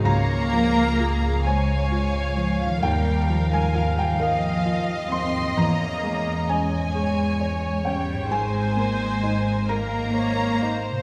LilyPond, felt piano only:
\new Staff \with { instrumentName = "Felt piano" } { \time 6/8 \key des \lydian \tempo 4. = 44 << { bes''4. aes''4~ aes''16 f''16 | g''8. aes''16 f''16 g''16 f''4 c'''8 | bes''4 aes''4. g''8 | aes''4. bes''4. | } \\ { des,8 f8 f'8 c''8 f'8 f8 | ees,8 f8 f'8 bes'8 f'8 f8 | fes,8 aes8 des'8 aes'8 des''8 des'8 | aes,8 bes8 ees'8 bes'8 c''8 ees'8 | } >> }